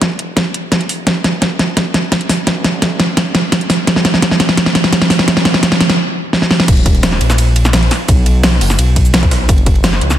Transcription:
0.00 0.18 A#1 loud
0.00 kick loud
0.00 snare medium
0.00 closed hi-hat medium
0.19 0.38 F1 medium
0.19 closed hi-hat medium
0.36 0.62 G#1 medium
0.36 kick loud
0.36 snare medium
0.36 closed hi-hat medium
0.54 closed hi-hat medium
0.63 1.05 F1 loud
0.72 kick medium
0.72 snare medium
0.72 closed hi-hat medium
0.81 closed hi-hat soft
0.89 open hi-hat medium
1.07 1.58 D#1 medium
1.07 kick medium
1.07 snare medium
1.07 closed hi-hat medium
1.24 snare medium
1.24 closed hi-hat medium
1.42 kick loud
1.42 snare medium
1.42 closed hi-hat medium
1.59 2.28 A#1 medium
1.59 snare medium
1.59 closed hi-hat medium
1.77 kick loud
1.77 snare medium
1.77 closed hi-hat medium
1.94 snare medium
1.94 closed hi-hat medium
2.12 kick loud
2.12 snare medium
2.12 closed hi-hat medium
2.21 closed hi-hat soft
2.29 snare medium
2.29 open hi-hat medium
2.47 2.98 B1 loud
2.47 kick loud
2.47 snare medium
2.47 closed hi-hat medium
2.64 snare medium
2.64 closed hi-hat medium
2.82 kick loud
2.82 snare medium
2.82 closed hi-hat medium
3.00 3.15 F#1 medium
3.00 snare medium
3.00 closed hi-hat medium
3.17 3.86 B1 medium
3.17 kick loud
3.17 snare medium
3.17 closed hi-hat medium
3.35 snare medium
3.35 closed hi-hat medium
3.52 kick loud
3.52 snare medium
3.52 closed hi-hat medium
3.61 closed hi-hat soft
3.70 snare medium
3.70 open hi-hat medium
3.87 4.39 F#1 loud
3.87 kick loud
3.87 snare medium
3.87 closed hi-hat loud
3.96 snare medium
4.05 snare medium
4.05 closed hi-hat medium
4.14 snare medium
4.22 kick loud
4.22 snare medium
4.22 closed hi-hat loud
4.31 snare medium
4.40 5.26 C#2 medium
4.40 snare medium
4.40 closed hi-hat medium
4.49 snare medium
4.57 kick loud
4.57 snare loud
4.57 closed hi-hat loud
4.66 snare medium
4.75 snare loud
4.75 closed hi-hat medium
4.84 snare medium
4.93 kick loud
4.93 snare loud
4.93 closed hi-hat loud
5.02 snare medium
5.02 closed hi-hat soft
5.10 snare loud
5.10 open hi-hat medium
5.19 snare medium
5.28 5.79 A#1 loud
5.28 kick loud
5.28 snare loud
5.28 closed hi-hat loud
5.37 snare medium
5.45 snare loud
5.45 closed hi-hat medium
5.54 snare medium
5.63 kick loud
5.63 snare loud
5.63 closed hi-hat loud
5.72 snare medium
5.72 closed hi-hat soft
5.80 5.98 F1 medium
5.80 snare loud
5.80 closed hi-hat medium
5.89 snare medium
5.89 closed hi-hat soft
6.33 snare medium
6.42 snare medium
6.51 snare medium
6.60 snare medium
6.68 7.19 D#1 loud
6.68 kick loud
6.68 closed hi-hat loud
6.68 crash loud
6.68 ride medium
6.68 shaker soft
6.77 ride soft
6.86 kick loud
6.86 closed hi-hat medium
6.86 ride medium
6.95 ride soft
7.03 snare loud
7.03 closed hi-hat loud
7.03 ride medium
7.03 shaker soft
7.12 snare soft
7.21 7.90 A#1 medium
7.21 closed hi-hat medium
7.21 ride medium
7.30 snare medium
7.30 snare soft
7.30 shaker medium
7.38 closed hi-hat loud
7.38 ride medium
7.38 shaker soft
7.56 closed hi-hat medium
7.56 ride medium
7.65 snare medium
7.65 shaker medium
7.73 snare loud
7.73 closed hi-hat loud
7.73 ride medium
7.73 shaker soft
7.83 closed hi-hat soft
7.91 snare soft
7.91 open hi-hat medium
7.91 ride medium
8.08 8.60 B1 loud
8.08 kick loud
8.08 closed hi-hat medium
8.08 ride medium
8.08 shaker soft
8.26 closed hi-hat medium
8.26 ride medium
8.44 snare loud
8.44 closed hi-hat medium
8.44 ride medium
8.44 shaker soft
8.61 8.77 F#1 medium
8.61 closed hi-hat medium
8.61 open hi-hat medium
8.70 snare soft
8.70 shaker medium
8.79 9.47 B1 medium
8.79 closed hi-hat loud
8.79 ride medium
8.79 shaker soft
8.96 kick medium
8.96 closed hi-hat medium
8.96 ride medium
9.05 shaker medium
9.14 snare loud
9.14 closed hi-hat medium
9.14 ride medium
9.14 shaker soft
9.23 kick loud
9.23 closed hi-hat soft
9.31 snare medium
9.31 open hi-hat medium
9.31 ride medium
9.49 10.00 F#1 loud
9.49 kick loud
9.49 closed hi-hat medium
9.49 ride medium
9.49 shaker soft
9.58 ride soft
9.66 kick loud
9.66 closed hi-hat medium
9.66 ride medium
9.76 ride soft
9.84 snare loud
9.84 closed hi-hat medium
9.84 ride medium
9.84 shaker soft
9.93 snare soft
10.01 10.19 C#2 medium
10.01 closed hi-hat medium
10.10 snare soft
10.10 shaker medium

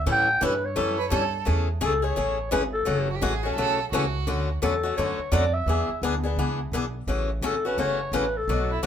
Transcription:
0.06 0.40 A2 medium
0.06 0.27 E3 medium
0.06 0.27 G3 medium
0.06 0.27 C#4 medium
0.06 0.28 E4 medium
0.06 0.27 A4 medium
0.12 0.42 G5 loud
0.41 0.75 G2 loud
0.41 0.52 E3 medium
0.41 0.53 G3 medium
0.41 0.53 C#4 medium
0.41 0.53 E4 loud
0.41 0.53 A4 medium
0.41 0.67 B4 medium
0.65 1.34 C#5 loud
0.76 1.11 F#2 medium
0.76 0.97 E3 medium
0.76 0.97 G3 medium
0.76 0.97 C#4 medium
0.76 0.97 E4 medium
0.76 0.97 A4 medium
0.98 1.10 B4 loud
1.10 1.45 G2 medium
1.10 1.22 E3 medium
1.10 1.22 G3 medium
1.10 1.22 C#4 loud
1.10 1.23 E4 medium
1.10 1.44 A4 medium
1.10 1.22 A4 loud
1.45 1.81 E2 medium
1.45 1.67 C#3 medium
1.45 1.67 E3 medium
1.45 1.67 A3 medium
1.45 1.67 C#4 medium
1.45 1.67 G#4 medium
1.81 2.16 C#2 medium
1.81 1.92 C#3 medium
1.81 1.92 E3 medium
1.81 1.92 A3 medium
1.81 1.92 C#4 medium
1.81 1.93 G#4 medium
1.81 2.05 A4 medium
2.02 2.16 A3 soft
2.02 2.15 C#4 soft
2.02 2.15 G#4 medium
2.02 2.51 C#5 loud
2.16 2.51 A1 medium
2.16 2.37 C#3 medium
2.16 2.37 E3 medium
2.16 2.38 A3 medium
2.16 2.37 C#4 medium
2.16 2.38 G#4 medium
2.51 2.86 G#1 medium
2.51 2.62 C#3 medium
2.51 2.63 E3 medium
2.51 2.63 A3 medium
2.51 2.63 C#4 medium
2.51 2.63 G#4 loud
2.51 2.62 B4 medium
2.73 3.18 A4 medium
2.85 3.21 F#1 medium
2.85 3.07 C#3 medium
2.85 3.07 E3 medium
2.85 3.07 A3 medium
2.85 3.07 C#4 medium
2.85 3.08 F#4 medium
3.10 3.17 F#4 medium
3.15 3.24 G4 medium
3.22 3.56 A1 medium
3.22 3.33 C#3 medium
3.22 3.33 E3 medium
3.22 3.33 A3 loud
3.22 3.33 C#4 medium
3.22 3.33 F#4 medium
3.22 3.55 G#4 medium
3.43 3.57 A3 soft
3.43 3.57 C#4 medium
3.43 3.56 F#4 medium
3.55 3.90 B1 medium
3.55 3.78 C#3 medium
3.55 3.78 E3 medium
3.55 3.78 A3 medium
3.55 3.78 C#4 medium
3.55 3.79 F#4 medium
3.55 3.89 A4 loud
3.92 4.26 C#2 medium
3.92 4.03 C#3 medium
3.92 4.04 E3 medium
3.92 4.04 A3 medium
3.92 4.04 C#4 medium
3.92 4.51 F#4 medium
3.92 4.04 F#4 medium
4.27 4.61 D2 medium
4.27 4.48 D3 medium
4.27 4.48 F#3 medium
4.27 4.48 A3 medium
4.27 4.48 C#4 medium
4.27 4.49 F#4 medium
4.62 4.96 E2 medium
4.62 4.73 D3 medium
4.62 4.73 F#3 medium
4.62 4.73 A3 medium
4.62 4.73 C#4 medium
4.62 4.73 F#4 medium
4.62 4.96 A4 medium
4.83 4.97 A3 soft
4.83 4.97 C#4 soft
4.83 4.96 F#4 medium
4.96 5.18 F#2 medium
4.96 5.18 D3 medium
4.96 5.18 F#3 medium
4.96 5.19 A3 medium
4.96 5.19 C#4 medium
4.96 5.19 F#4 medium
4.96 5.34 C#5 loud
5.19 muted upright bass stroke soft
5.32 5.66 F2 medium
5.32 5.43 D3 medium
5.32 5.43 F#3 medium
5.32 5.44 A3 loud
5.32 5.43 C#4 medium
5.32 5.44 F#4 loud
5.32 5.55 D5 medium
5.53 6.02 E5 loud
5.66 5.87 E2 medium
5.66 5.88 E3 medium
5.66 5.89 B3 medium
5.66 5.89 D4 medium
5.66 5.89 G#4 medium
5.89 muted upright bass stroke soft
6.02 6.36 D2 medium
6.02 6.14 E3 medium
6.02 6.14 B3 medium
6.02 6.14 D4 loud
6.02 6.14 G#4 loud
6.24 6.38 B3 soft
6.24 6.37 D4 soft
6.24 6.37 G#4 medium
6.36 6.71 C#2 medium
6.36 6.59 E3 medium
6.36 6.59 B3 medium
6.36 6.59 D4 medium
6.36 6.59 G#4 medium
6.72 7.06 B1 medium
6.72 6.84 E3 medium
6.72 6.84 B3 medium
6.72 6.84 D4 medium
6.72 6.85 G#4 medium
7.07 7.41 A1 medium
7.07 7.29 C#3 medium
7.07 7.29 E3 medium
7.07 7.29 A3 medium
7.07 7.29 C#4 medium
7.07 7.29 F#4 medium
7.42 7.76 G#1 medium
7.42 7.54 C#3 medium
7.42 7.54 E3 medium
7.42 7.54 A3 medium
7.42 7.54 C#4 medium
7.42 7.54 F#4 loud
7.42 7.68 A4 medium
7.65 7.77 A3 soft
7.65 7.78 C#4 soft
7.65 7.77 F#4 medium
7.65 7.79 B4 medium
7.78 8.11 F#1 medium
7.78 7.99 C#3 medium
7.78 7.99 E3 medium
7.78 7.99 A3 medium
7.78 7.99 C#4 medium
7.78 7.99 F#4 medium
7.78 8.18 C#5 loud
8.12 8.46 A1 medium
8.12 8.24 C#3 medium
8.12 8.24 E3 medium
8.12 8.24 A3 medium
8.12 8.24 C#4 medium
8.12 8.24 F#4 loud
8.16 8.38 B4 medium
8.37 8.84 A4 medium
8.48 8.82 B1 medium
8.48 8.70 B2 medium
8.48 8.70 F#3 medium
8.48 8.70 A3 medium
8.48 8.70 D4 medium
8.48 8.70 F#4 medium
8.71 8.83 E4 medium
8.83 8.86 B2 medium
8.83 8.86 A3 medium
8.83 8.86 D4 loud

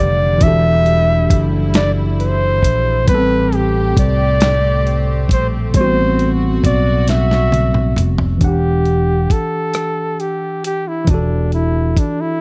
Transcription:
0.00 0.37 F1 medium
0.00 3.04 D3 medium
0.00 0.35 E3 medium
0.00 3.03 G3 medium
0.00 0.37 D4 medium
0.00 0.40 G4 medium
0.00 0.44 D5 loud
0.00 0.38 F#5 medium
0.00 0.39 F#5 medium
0.38 3.02 E3 medium
0.38 3.04 D4 medium
0.38 kick loud
0.38 closed hi-hat medium
0.42 1.26 E1 loud
0.42 3.06 E4 medium
0.42 3.05 F#4 medium
0.42 1.48 E5 loud
0.47 3.07 A4 medium
0.86 closed hi-hat soft
1.30 2.64 F#1 medium
1.30 kick medium
1.30 closed hi-hat medium
1.74 1.91 D5 loud
1.74 snare loud
1.74 closed hi-hat medium
2.20 3.04 C5 loud
2.20 closed hi-hat soft
2.63 3.04 A#1 medium
2.63 kick medium
2.63 closed hi-hat medium
3.05 3.93 A1 loud
3.05 5.69 A2 medium
3.05 5.70 G3 medium
3.05 8.37 C4 medium
3.05 5.72 G4 medium
3.05 kick loud
3.05 closed hi-hat medium
3.09 8.37 A3 medium
3.09 3.16 B3 soft
3.09 3.56 B4 loud
3.15 5.75 C4 medium
3.15 5.74 A4 medium
3.53 3.98 G4 medium
3.53 closed hi-hat soft
3.97 5.30 C2 loud
3.97 5.27 D5 loud
3.97 kick medium
3.97 closed hi-hat medium
4.41 snare loud
4.41 closed hi-hat medium
4.87 closed hi-hat soft
5.29 5.70 A#1 medium
5.29 5.48 C5 medium
5.29 kick medium
5.29 closed hi-hat medium
5.71 6.60 A1 medium
5.71 8.35 A2 medium
5.71 8.37 G3 medium
5.71 8.38 F#4 medium
5.71 kick loud
5.71 closed hi-hat medium
5.76 5.82 B3 soft
5.76 6.33 C5 loud
5.81 8.42 C4 medium
5.81 8.40 F#4 medium
6.19 closed hi-hat soft
6.64 7.93 B1 medium
6.64 7.06 D5 medium
6.64 kick medium
6.64 closed hi-hat medium
7.08 8.05 E5 medium
7.08 snare medium
7.08 closed hi-hat medium
7.31 snare medium
7.52 closed hi-hat soft
7.52 high tom medium
7.74 mid tom medium
7.96 8.38 F1 medium
7.96 closed hi-hat medium
7.96 mid tom medium
8.18 floor tom loud
8.38 9.26 E1 medium
8.38 11.02 E3 medium
8.38 11.04 D4 medium
8.38 kick medium
8.38 closed hi-hat medium
8.44 9.33 G4 medium
8.44 11.07 G4 medium
8.44 11.05 F#5 medium
8.85 closed hi-hat soft
9.30 10.22 A4 medium
9.30 kick medium
9.30 closed hi-hat medium
9.74 cross-stick loud
9.74 closed hi-hat medium
10.20 10.64 G4 medium
10.20 closed hi-hat soft
10.64 10.89 G4 medium
10.64 closed hi-hat medium
10.88 11.11 E4 medium
11.05 11.93 E1 medium
11.05 12.41 E3 medium
11.05 12.41 D4 medium
11.05 kick medium
11.05 closed hi-hat medium
11.10 11.53 D4 medium
11.10 12.41 F#4 medium
11.14 12.41 A4 medium
11.52 12.00 E4 medium
11.52 closed hi-hat soft
11.97 12.22 D4 medium
11.97 kick medium
11.97 closed hi-hat medium
12.21 12.41 E4 medium

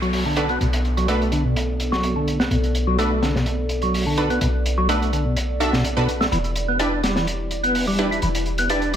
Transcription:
0.00 0.58 B1 medium
0.00 0.24 F#3 medium
0.00 6.28 B3 medium
0.00 6.28 A4 medium
0.00 8.96 D5 medium
0.00 closed hi-hat soft
0.00 downlifter medium
0.13 open hi-hat medium
0.26 0.48 D3 medium
0.36 1.06 D4 medium
0.36 1.06 F#4 medium
0.36 1.06 A4 medium
0.36 1.05 B4 medium
0.36 closed hi-hat medium
0.49 0.59 B3 medium
0.49 closed hi-hat soft
0.61 2.49 B1 medium
0.61 0.67 B2 medium
0.61 closed hi-hat medium
0.73 closed hi-hat medium
0.85 closed hi-hat soft
0.97 1.07 F#3 medium
0.97 closed hi-hat medium
1.08 1.31 A3 medium
1.08 1.20 D4 medium
1.08 1.20 F#4 medium
1.08 1.20 A4 medium
1.08 1.20 B4 loud
1.08 closed hi-hat medium
1.22 closed hi-hat soft
1.32 1.44 D3 medium
1.32 closed hi-hat medium
1.45 1.55 B2 medium
1.56 closed hi-hat medium
1.80 closed hi-hat medium
1.92 2.15 F#3 loud
1.92 snare soft
2.03 closed hi-hat medium
2.16 2.39 D3 medium
2.28 closed hi-hat medium
2.40 2.49 B3 medium
2.40 snare medium
2.51 4.39 B1 medium
2.51 2.57 B2 medium
2.51 closed hi-hat medium
2.64 closed hi-hat soft
2.75 closed hi-hat medium
2.87 2.97 F#3 medium
2.98 3.21 A3 loud
2.98 3.10 D4 medium
2.98 3.10 F#4 medium
2.98 3.10 A4 medium
2.98 3.10 B4 loud
2.98 closed hi-hat medium
3.22 3.34 D3 medium
3.22 snare soft
3.22 closed hi-hat medium
3.35 3.46 B2 medium
3.35 snare soft
3.46 closed hi-hat medium
3.69 closed hi-hat medium
3.82 4.05 F#3 loud
3.82 closed hi-hat soft
3.94 open hi-hat medium
4.06 4.29 D3 medium
4.17 4.86 D4 medium
4.17 4.86 F#4 medium
4.17 4.86 A4 medium
4.17 4.86 B4 loud
4.17 closed hi-hat medium
4.30 4.40 B3 medium
4.30 closed hi-hat soft
4.41 6.30 B1 medium
4.41 4.48 B2 medium
4.41 closed hi-hat medium
4.66 closed hi-hat medium
4.78 4.88 F#3 medium
4.89 5.12 A3 medium
4.89 5.01 D4 medium
4.89 5.01 F#4 medium
4.89 5.01 A4 medium
4.89 5.00 B4 loud
4.89 closed hi-hat medium
5.02 closed hi-hat soft
5.13 5.25 D3 medium
5.13 closed hi-hat medium
5.25 5.36 B2 medium
5.37 closed hi-hat medium
5.60 5.78 D4 medium
5.60 5.78 F#4 medium
5.60 5.78 A4 medium
5.60 5.78 E5 loud
5.60 closed hi-hat medium
5.73 5.84 B2 loud
5.73 snare soft
5.84 closed hi-hat medium
5.97 6.08 B2 loud
5.97 6.07 D4 medium
5.97 6.07 F#4 medium
5.97 6.07 A4 medium
5.97 6.07 B4 loud
6.09 closed hi-hat medium
6.21 6.26 A3 medium
6.21 snare soft
6.32 8.20 E1 medium
6.32 6.38 E3 medium
6.32 8.96 E4 medium
6.32 8.96 G4 medium
6.32 closed hi-hat medium
6.44 closed hi-hat soft
6.56 closed hi-hat medium
6.68 6.79 B3 medium
6.79 6.91 D4 loud
6.79 7.02 D4 medium
6.79 6.91 E4 medium
6.79 6.91 G4 medium
6.79 6.91 B4 loud
6.79 closed hi-hat medium
7.03 7.15 G3 medium
7.03 snare soft
7.03 closed hi-hat medium
7.16 7.27 E3 medium
7.16 snare soft
7.27 closed hi-hat medium
7.51 closed hi-hat medium
7.64 7.86 B3 loud
7.64 closed hi-hat soft
7.75 open hi-hat medium
7.88 8.10 G3 medium
7.98 8.67 D4 medium
7.98 8.67 E4 medium
7.98 8.67 G4 medium
7.98 8.67 B4 loud
7.98 closed hi-hat medium
8.11 8.21 E4 medium
8.11 closed hi-hat soft
8.22 8.96 E1 medium
8.22 8.29 E3 medium
8.22 closed hi-hat medium
8.35 closed hi-hat medium
8.46 closed hi-hat soft
8.58 8.69 B3 loud
8.58 closed hi-hat medium
8.70 8.82 D4 medium
8.70 8.93 D4 loud
8.70 8.82 E4 medium
8.70 8.82 G4 medium
8.70 8.82 B4 loud
8.70 closed hi-hat medium
8.82 closed hi-hat soft

